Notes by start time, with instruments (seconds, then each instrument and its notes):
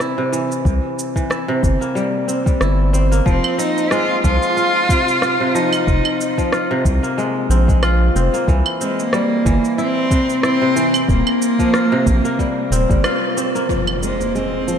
Already playing: kora C3 G3 C4
0.00 kora E4, cross-stick, cabasa
0.18 kora C3
0.32 kora E3, cabasa
0.52 cabasa
0.65 analog synth bass C2, kick, cabasa
0.99 cabasa
1.16 kora E3, kick, cabasa
1.30 kora E4, cross-stick, cabasa
1.48 kora C3
1.63 analog synth bass G1, kick, cabasa
1.81 kora A#3, cabasa
1.95 kora G3, cabasa
2.28 kora C4, cabasa
2.46 kora G3, kick, cabasa
2.61 analog synth bass G1, kora E4, cross-stick, cabasa
2.93 kora C4, cabasa
3.12 kora A#3, cabasa
3.26 analog synth bass F1, kora F3, cello C4, kick, cabasa
3.44 claves
3.58 kora C4, cello D#4, cabasa
3.78 cabasa
3.91 kora G#3, cello F4, cross-stick, cabasa
4.23 analog synth bass C2, kora F3, cello F4, kick, cabasa
4.42 cabasa
4.57 kora F4, cabasa
4.89 kora C3, kick, cabasa
5.08 cabasa
5.22 kora F4, cross-stick, cabasa
5.40 kora C3
5.55 kora F3, cello D#4, cabasa
5.73 cabasa, claves
5.87 analog synth bass F1, kick, cabasa
6.05 claves
6.21 cabasa
6.38 kora F3, kick, cabasa
6.53 kora F4, cross-stick, cabasa
6.71 kora C3
6.85 analog synth bass C2, kick, cabasa
7.03 kora A#3, cabasa
7.18 kora G#3, cabasa
7.49 analog synth bass A#1, kora C4, cabasa
7.68 kora G#3, kick, cabasa
7.83 kora F4, cross-stick, cabasa, claves
8.15 analog synth bass F1, kora C4, cabasa
8.34 kora A#3, cabasa
8.48 analog synth bass C2, kora E3, kick, cabasa
8.66 claves
8.81 cello G#3, kora C4, cabasa
8.99 cello A#3, cabasa
9.13 kora G3, cross-stick, cabasa
9.45 analog synth bass G1, kora E3, kick, cabasa
9.65 cabasa
9.78 cello C4, kora E4, cabasa
10.11 kora C3, kick, cabasa
10.30 cabasa
10.43 cello C4, kora E4, cross-stick, cabasa
10.62 kora C3
10.76 kora E3, cabasa
10.94 cabasa, claves
11.08 analog synth bass D#1, cello A#3, kick, cabasa
11.27 claves
11.42 cabasa
11.59 kora F3, kick, cabasa
11.74 kora F4, cross-stick, cabasa
11.92 kora C3
12.06 analog synth bass A#1, kick, cabasa
12.25 kora A#3, cabasa
12.39 kora G3, kick, cabasa
12.71 analog synth bass D#1, kora C4, cabasa
12.89 analog synth bass G1, kora G3, kick, cabasa
13.04 kora F4, cross-stick, cabasa, claves
13.37 kora C4, cabasa
13.55 kora A#3, cabasa
13.69 kora F3, impact, cabasa
13.87 claves
14.02 cello G#3, kora C4, cabasa
14.20 cello A#3, cabasa
14.35 kora G#3, cello C4, cabasa
14.67 kora F3, cabasa